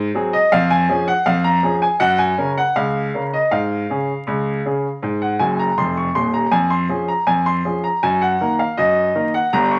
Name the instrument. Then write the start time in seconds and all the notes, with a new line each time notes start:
grand piano
0.15 F#3 C4 G#4
0.33 D#5
0.52 F2 F5
0.70 G#5
0.89 F3 C#4 G#4
1.08 F#5
1.26 F2 F5
1.44 A#5
1.63 F3 C#4 G#4
1.82 G#5
2.00 F#2 F#5
2.19 G#5
2.38 C#3 C#4 A#4
2.57 F#5
2.76 C#2 F5
3.14 C#3 C#4 A#4
3.34 D#5
3.51 G#2 F5
3.90 C#3 C#4 G#4
4.27 C#2
4.65 C#3 C#4 G#4
5.03 G#2
5.22 F#5
5.39 F#1 F#2 G#5
5.59 A#5
5.78 F1 F2 C6
5.97 C#6
6.15 D#1 D#2 C6
6.34 A#5
6.51 F2 G#5
6.70 C6
6.89 F3 C#4 G#4
7.08 A#5
7.27 F2 G#5
7.46 C6
7.65 F3 C#4 G#4
7.84 A#5
8.03 F#2 G#5
8.22 F#5
8.40 D#3 A#3 A#4
8.59 F5
8.78 F#2 D#5
9.15 D#3 A#3 A#4
9.34 F#5
9.53 G1 G2 A#5
9.71 C#6